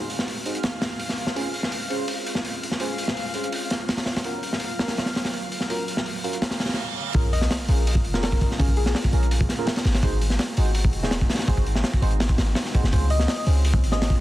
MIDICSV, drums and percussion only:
0, 0, Header, 1, 2, 480
1, 0, Start_track
1, 0, Key_signature, -5, "minor"
1, 0, Tempo, 361446
1, 1803, Time_signature, 4, 2, 24, 8
1, 18862, End_track
2, 0, Start_track
2, 0, Title_t, "Drums"
2, 130, Note_on_c, 9, 46, 64
2, 251, Note_on_c, 9, 38, 49
2, 263, Note_off_c, 9, 46, 0
2, 369, Note_on_c, 9, 46, 79
2, 383, Note_off_c, 9, 38, 0
2, 502, Note_off_c, 9, 46, 0
2, 604, Note_on_c, 9, 46, 61
2, 727, Note_on_c, 9, 42, 42
2, 737, Note_off_c, 9, 46, 0
2, 841, Note_on_c, 9, 46, 68
2, 847, Note_on_c, 9, 38, 97
2, 860, Note_off_c, 9, 42, 0
2, 974, Note_off_c, 9, 46, 0
2, 980, Note_off_c, 9, 38, 0
2, 1083, Note_on_c, 9, 46, 70
2, 1084, Note_on_c, 9, 38, 100
2, 1216, Note_off_c, 9, 46, 0
2, 1217, Note_off_c, 9, 38, 0
2, 1321, Note_on_c, 9, 46, 88
2, 1451, Note_on_c, 9, 38, 40
2, 1454, Note_off_c, 9, 46, 0
2, 1563, Note_on_c, 9, 46, 62
2, 1584, Note_off_c, 9, 38, 0
2, 1684, Note_on_c, 9, 38, 55
2, 1696, Note_off_c, 9, 46, 0
2, 1810, Note_on_c, 9, 46, 88
2, 1816, Note_off_c, 9, 38, 0
2, 1943, Note_off_c, 9, 46, 0
2, 2043, Note_on_c, 9, 46, 66
2, 2166, Note_on_c, 9, 38, 45
2, 2176, Note_off_c, 9, 46, 0
2, 2282, Note_on_c, 9, 46, 92
2, 2299, Note_off_c, 9, 38, 0
2, 2414, Note_off_c, 9, 46, 0
2, 2528, Note_on_c, 9, 46, 71
2, 2661, Note_off_c, 9, 46, 0
2, 2760, Note_on_c, 9, 46, 87
2, 2893, Note_off_c, 9, 46, 0
2, 3007, Note_on_c, 9, 46, 67
2, 3123, Note_on_c, 9, 38, 46
2, 3140, Note_off_c, 9, 46, 0
2, 3249, Note_on_c, 9, 46, 82
2, 3256, Note_off_c, 9, 38, 0
2, 3382, Note_off_c, 9, 46, 0
2, 3497, Note_on_c, 9, 46, 67
2, 3606, Note_on_c, 9, 38, 40
2, 3629, Note_off_c, 9, 46, 0
2, 3715, Note_on_c, 9, 46, 87
2, 3739, Note_off_c, 9, 38, 0
2, 3848, Note_off_c, 9, 46, 0
2, 3961, Note_on_c, 9, 46, 65
2, 4087, Note_on_c, 9, 38, 51
2, 4094, Note_off_c, 9, 46, 0
2, 4208, Note_on_c, 9, 46, 79
2, 4220, Note_off_c, 9, 38, 0
2, 4341, Note_off_c, 9, 46, 0
2, 4431, Note_on_c, 9, 46, 63
2, 4562, Note_on_c, 9, 42, 44
2, 4564, Note_off_c, 9, 46, 0
2, 4679, Note_on_c, 9, 46, 82
2, 4695, Note_off_c, 9, 42, 0
2, 4812, Note_off_c, 9, 46, 0
2, 4918, Note_on_c, 9, 46, 66
2, 4928, Note_on_c, 9, 38, 46
2, 5051, Note_off_c, 9, 46, 0
2, 5060, Note_off_c, 9, 38, 0
2, 5161, Note_on_c, 9, 46, 77
2, 5164, Note_on_c, 9, 38, 90
2, 5274, Note_off_c, 9, 38, 0
2, 5274, Note_on_c, 9, 38, 108
2, 5283, Note_off_c, 9, 46, 0
2, 5283, Note_on_c, 9, 46, 70
2, 5388, Note_off_c, 9, 38, 0
2, 5388, Note_on_c, 9, 38, 90
2, 5394, Note_off_c, 9, 46, 0
2, 5394, Note_on_c, 9, 46, 70
2, 5521, Note_off_c, 9, 38, 0
2, 5527, Note_off_c, 9, 46, 0
2, 5528, Note_on_c, 9, 46, 78
2, 5533, Note_on_c, 9, 38, 91
2, 5634, Note_off_c, 9, 46, 0
2, 5634, Note_on_c, 9, 46, 89
2, 5666, Note_off_c, 9, 38, 0
2, 5766, Note_off_c, 9, 46, 0
2, 5882, Note_on_c, 9, 46, 68
2, 6012, Note_on_c, 9, 38, 46
2, 6015, Note_off_c, 9, 46, 0
2, 6107, Note_on_c, 9, 46, 89
2, 6145, Note_off_c, 9, 38, 0
2, 6239, Note_off_c, 9, 46, 0
2, 6366, Note_on_c, 9, 38, 98
2, 6373, Note_on_c, 9, 46, 83
2, 6482, Note_off_c, 9, 38, 0
2, 6482, Note_off_c, 9, 46, 0
2, 6482, Note_on_c, 9, 38, 87
2, 6482, Note_on_c, 9, 46, 79
2, 6604, Note_off_c, 9, 46, 0
2, 6604, Note_on_c, 9, 46, 79
2, 6615, Note_off_c, 9, 38, 0
2, 6616, Note_on_c, 9, 38, 103
2, 6718, Note_off_c, 9, 38, 0
2, 6718, Note_on_c, 9, 38, 94
2, 6722, Note_off_c, 9, 46, 0
2, 6722, Note_on_c, 9, 46, 81
2, 6842, Note_off_c, 9, 46, 0
2, 6842, Note_on_c, 9, 46, 79
2, 6850, Note_off_c, 9, 38, 0
2, 6854, Note_on_c, 9, 38, 103
2, 6967, Note_off_c, 9, 46, 0
2, 6967, Note_on_c, 9, 46, 71
2, 6969, Note_off_c, 9, 38, 0
2, 6969, Note_on_c, 9, 38, 96
2, 7084, Note_off_c, 9, 46, 0
2, 7084, Note_on_c, 9, 46, 83
2, 7102, Note_off_c, 9, 38, 0
2, 7217, Note_off_c, 9, 46, 0
2, 7326, Note_on_c, 9, 46, 65
2, 7444, Note_on_c, 9, 38, 38
2, 7459, Note_off_c, 9, 46, 0
2, 7569, Note_on_c, 9, 46, 80
2, 7577, Note_off_c, 9, 38, 0
2, 7701, Note_off_c, 9, 46, 0
2, 7808, Note_on_c, 9, 46, 59
2, 7929, Note_on_c, 9, 38, 56
2, 7941, Note_off_c, 9, 46, 0
2, 8046, Note_on_c, 9, 46, 85
2, 8062, Note_off_c, 9, 38, 0
2, 8179, Note_off_c, 9, 46, 0
2, 8290, Note_on_c, 9, 46, 68
2, 8407, Note_on_c, 9, 42, 44
2, 8423, Note_off_c, 9, 46, 0
2, 8524, Note_on_c, 9, 46, 80
2, 8526, Note_on_c, 9, 38, 104
2, 8540, Note_off_c, 9, 42, 0
2, 8642, Note_off_c, 9, 38, 0
2, 8642, Note_on_c, 9, 38, 97
2, 8651, Note_off_c, 9, 46, 0
2, 8651, Note_on_c, 9, 46, 67
2, 8763, Note_off_c, 9, 38, 0
2, 8763, Note_on_c, 9, 38, 90
2, 8768, Note_off_c, 9, 46, 0
2, 8768, Note_on_c, 9, 46, 63
2, 8828, Note_off_c, 9, 46, 0
2, 8828, Note_on_c, 9, 46, 62
2, 8834, Note_off_c, 9, 38, 0
2, 8834, Note_on_c, 9, 38, 81
2, 8882, Note_off_c, 9, 38, 0
2, 8882, Note_on_c, 9, 38, 87
2, 8889, Note_off_c, 9, 46, 0
2, 8889, Note_on_c, 9, 46, 61
2, 8945, Note_off_c, 9, 38, 0
2, 8945, Note_on_c, 9, 38, 81
2, 8946, Note_off_c, 9, 46, 0
2, 8946, Note_on_c, 9, 46, 64
2, 9077, Note_off_c, 9, 38, 0
2, 9079, Note_off_c, 9, 46, 0
2, 9482, Note_on_c, 9, 46, 83
2, 9490, Note_on_c, 9, 36, 101
2, 9614, Note_off_c, 9, 46, 0
2, 9623, Note_off_c, 9, 36, 0
2, 9734, Note_on_c, 9, 46, 72
2, 9846, Note_on_c, 9, 38, 51
2, 9867, Note_off_c, 9, 46, 0
2, 9968, Note_off_c, 9, 38, 0
2, 9968, Note_on_c, 9, 38, 126
2, 9969, Note_on_c, 9, 46, 91
2, 10101, Note_off_c, 9, 38, 0
2, 10102, Note_off_c, 9, 46, 0
2, 10204, Note_on_c, 9, 46, 74
2, 10337, Note_off_c, 9, 46, 0
2, 10453, Note_on_c, 9, 46, 91
2, 10561, Note_on_c, 9, 36, 104
2, 10586, Note_off_c, 9, 46, 0
2, 10684, Note_on_c, 9, 46, 68
2, 10694, Note_off_c, 9, 36, 0
2, 10810, Note_on_c, 9, 38, 57
2, 10816, Note_off_c, 9, 46, 0
2, 10926, Note_on_c, 9, 46, 94
2, 10937, Note_off_c, 9, 38, 0
2, 10937, Note_on_c, 9, 38, 120
2, 11054, Note_on_c, 9, 36, 102
2, 11059, Note_off_c, 9, 46, 0
2, 11070, Note_off_c, 9, 38, 0
2, 11170, Note_on_c, 9, 46, 62
2, 11174, Note_off_c, 9, 36, 0
2, 11174, Note_on_c, 9, 36, 101
2, 11303, Note_off_c, 9, 46, 0
2, 11304, Note_on_c, 9, 38, 38
2, 11307, Note_off_c, 9, 36, 0
2, 11415, Note_on_c, 9, 36, 111
2, 11415, Note_on_c, 9, 46, 94
2, 11437, Note_off_c, 9, 38, 0
2, 11525, Note_off_c, 9, 36, 0
2, 11525, Note_on_c, 9, 36, 89
2, 11548, Note_off_c, 9, 46, 0
2, 11640, Note_on_c, 9, 46, 69
2, 11658, Note_off_c, 9, 36, 0
2, 11766, Note_on_c, 9, 38, 65
2, 11773, Note_off_c, 9, 46, 0
2, 11882, Note_off_c, 9, 38, 0
2, 11882, Note_on_c, 9, 38, 109
2, 11897, Note_on_c, 9, 46, 86
2, 12009, Note_on_c, 9, 36, 91
2, 12015, Note_off_c, 9, 38, 0
2, 12030, Note_off_c, 9, 46, 0
2, 12121, Note_on_c, 9, 46, 64
2, 12142, Note_off_c, 9, 36, 0
2, 12253, Note_on_c, 9, 42, 43
2, 12254, Note_off_c, 9, 46, 0
2, 12365, Note_on_c, 9, 46, 86
2, 12386, Note_off_c, 9, 42, 0
2, 12492, Note_on_c, 9, 36, 92
2, 12498, Note_off_c, 9, 46, 0
2, 12603, Note_on_c, 9, 38, 54
2, 12611, Note_on_c, 9, 46, 70
2, 12624, Note_off_c, 9, 36, 0
2, 12736, Note_off_c, 9, 38, 0
2, 12743, Note_off_c, 9, 46, 0
2, 12839, Note_on_c, 9, 46, 78
2, 12847, Note_on_c, 9, 38, 105
2, 12962, Note_off_c, 9, 46, 0
2, 12962, Note_on_c, 9, 46, 84
2, 12972, Note_off_c, 9, 38, 0
2, 12972, Note_on_c, 9, 38, 102
2, 13075, Note_off_c, 9, 46, 0
2, 13075, Note_on_c, 9, 46, 80
2, 13088, Note_off_c, 9, 38, 0
2, 13088, Note_on_c, 9, 38, 108
2, 13205, Note_off_c, 9, 46, 0
2, 13205, Note_on_c, 9, 46, 82
2, 13207, Note_off_c, 9, 38, 0
2, 13207, Note_on_c, 9, 38, 97
2, 13318, Note_on_c, 9, 36, 106
2, 13322, Note_off_c, 9, 46, 0
2, 13322, Note_on_c, 9, 46, 79
2, 13340, Note_off_c, 9, 38, 0
2, 13451, Note_off_c, 9, 36, 0
2, 13454, Note_off_c, 9, 46, 0
2, 13564, Note_on_c, 9, 46, 69
2, 13680, Note_on_c, 9, 38, 46
2, 13697, Note_off_c, 9, 46, 0
2, 13796, Note_on_c, 9, 46, 84
2, 13801, Note_off_c, 9, 38, 0
2, 13801, Note_on_c, 9, 38, 111
2, 13929, Note_off_c, 9, 46, 0
2, 13934, Note_off_c, 9, 38, 0
2, 14034, Note_on_c, 9, 46, 75
2, 14167, Note_off_c, 9, 46, 0
2, 14271, Note_on_c, 9, 46, 88
2, 14403, Note_on_c, 9, 36, 93
2, 14404, Note_off_c, 9, 46, 0
2, 14512, Note_on_c, 9, 46, 69
2, 14535, Note_off_c, 9, 36, 0
2, 14645, Note_off_c, 9, 46, 0
2, 14652, Note_on_c, 9, 38, 50
2, 14755, Note_off_c, 9, 38, 0
2, 14755, Note_on_c, 9, 38, 117
2, 14761, Note_on_c, 9, 46, 91
2, 14888, Note_off_c, 9, 38, 0
2, 14892, Note_on_c, 9, 36, 98
2, 14894, Note_off_c, 9, 46, 0
2, 15001, Note_on_c, 9, 38, 83
2, 15006, Note_on_c, 9, 46, 67
2, 15025, Note_off_c, 9, 36, 0
2, 15061, Note_off_c, 9, 46, 0
2, 15061, Note_on_c, 9, 46, 70
2, 15067, Note_off_c, 9, 38, 0
2, 15067, Note_on_c, 9, 38, 87
2, 15123, Note_off_c, 9, 38, 0
2, 15123, Note_on_c, 9, 38, 106
2, 15126, Note_off_c, 9, 46, 0
2, 15126, Note_on_c, 9, 46, 83
2, 15239, Note_off_c, 9, 46, 0
2, 15239, Note_on_c, 9, 46, 93
2, 15244, Note_on_c, 9, 36, 109
2, 15256, Note_off_c, 9, 38, 0
2, 15371, Note_off_c, 9, 36, 0
2, 15371, Note_on_c, 9, 36, 100
2, 15372, Note_off_c, 9, 46, 0
2, 15489, Note_on_c, 9, 46, 65
2, 15503, Note_off_c, 9, 36, 0
2, 15610, Note_on_c, 9, 38, 55
2, 15622, Note_off_c, 9, 46, 0
2, 15720, Note_off_c, 9, 38, 0
2, 15720, Note_on_c, 9, 38, 124
2, 15726, Note_on_c, 9, 46, 85
2, 15850, Note_on_c, 9, 36, 89
2, 15853, Note_off_c, 9, 38, 0
2, 15859, Note_off_c, 9, 46, 0
2, 15966, Note_on_c, 9, 46, 74
2, 15983, Note_off_c, 9, 36, 0
2, 16075, Note_on_c, 9, 42, 40
2, 16099, Note_off_c, 9, 46, 0
2, 16203, Note_on_c, 9, 46, 85
2, 16206, Note_on_c, 9, 38, 108
2, 16208, Note_off_c, 9, 42, 0
2, 16324, Note_on_c, 9, 36, 101
2, 16336, Note_off_c, 9, 46, 0
2, 16338, Note_off_c, 9, 38, 0
2, 16441, Note_on_c, 9, 46, 76
2, 16443, Note_on_c, 9, 38, 98
2, 16457, Note_off_c, 9, 36, 0
2, 16574, Note_off_c, 9, 46, 0
2, 16576, Note_off_c, 9, 38, 0
2, 16670, Note_on_c, 9, 38, 120
2, 16686, Note_on_c, 9, 46, 89
2, 16801, Note_off_c, 9, 38, 0
2, 16801, Note_on_c, 9, 38, 49
2, 16819, Note_off_c, 9, 46, 0
2, 16924, Note_on_c, 9, 46, 64
2, 16927, Note_on_c, 9, 36, 103
2, 16934, Note_off_c, 9, 38, 0
2, 17053, Note_on_c, 9, 38, 56
2, 17057, Note_off_c, 9, 46, 0
2, 17060, Note_off_c, 9, 36, 0
2, 17164, Note_on_c, 9, 46, 95
2, 17170, Note_on_c, 9, 36, 103
2, 17186, Note_off_c, 9, 38, 0
2, 17296, Note_off_c, 9, 46, 0
2, 17303, Note_off_c, 9, 36, 0
2, 17397, Note_on_c, 9, 46, 69
2, 17522, Note_on_c, 9, 38, 45
2, 17529, Note_off_c, 9, 46, 0
2, 17638, Note_on_c, 9, 46, 93
2, 17639, Note_off_c, 9, 38, 0
2, 17639, Note_on_c, 9, 38, 124
2, 17771, Note_off_c, 9, 46, 0
2, 17772, Note_off_c, 9, 38, 0
2, 17881, Note_on_c, 9, 46, 74
2, 18014, Note_off_c, 9, 46, 0
2, 18121, Note_on_c, 9, 46, 88
2, 18241, Note_on_c, 9, 36, 98
2, 18254, Note_off_c, 9, 46, 0
2, 18374, Note_off_c, 9, 36, 0
2, 18374, Note_on_c, 9, 46, 68
2, 18482, Note_on_c, 9, 38, 54
2, 18506, Note_off_c, 9, 46, 0
2, 18614, Note_on_c, 9, 46, 84
2, 18615, Note_off_c, 9, 38, 0
2, 18615, Note_on_c, 9, 38, 117
2, 18726, Note_on_c, 9, 36, 99
2, 18747, Note_off_c, 9, 38, 0
2, 18747, Note_off_c, 9, 46, 0
2, 18859, Note_off_c, 9, 36, 0
2, 18862, End_track
0, 0, End_of_file